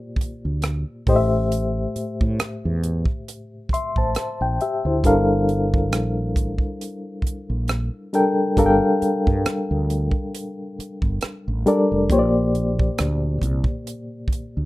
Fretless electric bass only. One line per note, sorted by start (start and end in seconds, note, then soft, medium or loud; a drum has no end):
0.17 muted fretless electric bass stroke soft
0.45 0.83 D2 medium
1.07 1.86 A1 medium
1.96 muted fretless electric bass stroke soft
2.21 2.38 A2 medium
2.41 muted fretless electric bass stroke soft
2.65 3.04 E2 medium
3.70 muted fretless electric bass stroke soft
3.97 4.14 A1 medium
4.17 muted fretless electric bass stroke soft
4.41 4.58 A#1 medium
4.85 5.02 D2 medium
5.04 5.93 G1 medium
5.93 6.36 A#1 medium
6.36 6.58 A1 medium
7.23 muted fretless electric bass stroke soft
7.50 7.89 A#1 medium
8.57 8.79 G1 medium
9.02 muted fretless electric bass stroke soft
9.27 9.44 G2 medium
9.46 muted fretless electric bass stroke soft
9.71 10.10 D2 medium
10.79 muted fretless electric bass stroke soft
11.02 11.20 G1 medium
11.48 11.64 A1 medium
11.92 12.08 F1 medium
12.10 12.88 A#1 loud
13.00 13.38 D2 medium
13.42 13.64 C2 medium
14.28 muted fretless electric bass stroke soft
14.57 14.65 D2 medium